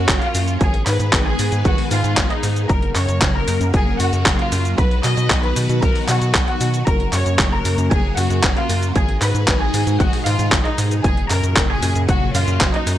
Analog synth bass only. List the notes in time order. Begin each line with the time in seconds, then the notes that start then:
0.09 F#1
0.35 F#2
0.61 G#1
0.87 G#2
1.00 G#2
1.13 G#1
1.39 G#2
1.52 G#2
1.65 G#1
1.91 G#2
2.04 G#2
2.17 G#1
2.44 G#2
2.70 F#1
2.96 F#2
3.09 F#2
3.22 F#1
3.48 F#2
3.61 F#2
3.74 F#1
4.00 F#2
4.13 F#2
4.26 F#1
4.52 F#2
4.78 B1
5.04 B2
5.17 B2
5.30 B1
5.56 B2
5.69 B2
5.83 B1
6.09 B2
6.22 B2
6.35 B1
6.61 B2
6.87 F#1
7.13 F#2
7.26 F#2
7.39 F#1
7.65 F#2
7.78 F#2
7.91 F#1
8.17 F#2
8.30 F#2
8.44 F#1
8.69 F#2
8.96 G#1
9.22 G#2
9.35 G#2
9.48 G#1
9.74 G#2
9.87 G#2
10.00 G#1
10.26 G#2
10.39 G#2
10.52 G#1
10.78 G#2
11.04 F#1
11.30 F#2
11.43 F#2
11.57 F#1
11.83 F#2
11.96 F#2
12.09 F#1
12.35 F#2
12.48 F#2
12.61 F#1
12.87 F#2